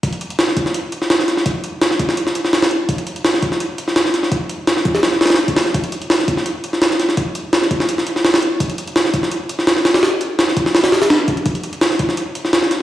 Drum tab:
HH |x-x-x-x-o---x---x---x---x---x---|x---x---x---x---x---x---o-o-x---|x-x-x-x-o---x---x---x---x---x---|x---x---x---x---o---oooo--x-o---|
SD |--------o-o---o-------o-o-o-o-o-|--------o-o---o---o---o-o-o-----|--------o-o---o-------o-o-o-o-o-|--------o-o---o-o-o-ooooo---o-o-|
BD |o-----------o-------------------|o-----------o-------------------|o-----------o-------------------|o-----------o-------------o-----|

HH |x-x-x-x-o---x---x---x---x---x---|x---x---x---x---x---x---o-o-x---|x-x-x-x-o---x---x---x---x---o-o-|o---x---x---x---o-o-o-o-x---x-x-|
SD |--------o-o---o-------o-o-o-o-o-|--------o-o---o---o---o-o-o-----|--------o-o---o-------o-o-o-o-o-|o-------o-o---o-o-o-o-o-o-------|
BD |o-----------o-------------------|o-----------o-------------------|o-----------o-------------------|------------o---------------o---|

HH |x-x-x-x-o---x---x---x---x---x---|
SD |--------o-o---o-------o-o-o-o---|
BD |o-----------o-------------------|